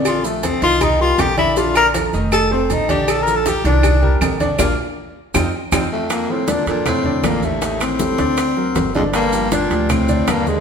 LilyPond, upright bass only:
\new Staff \with { instrumentName = "Upright bass" } { \clef bass \time 4/4 \key bes \major \tempo 4 = 159 bes,,4. c,4. bes,,4~ | bes,,4. f,,4. bes,,4~ | bes,,4. c,4. bes,,4 | bes,,8 r4. f,8 r8 f,8 r8 |
r4. f,4. a,,4~ | a,,4. d,4. g,,4~ | g,,4. d,4. ees,4 | }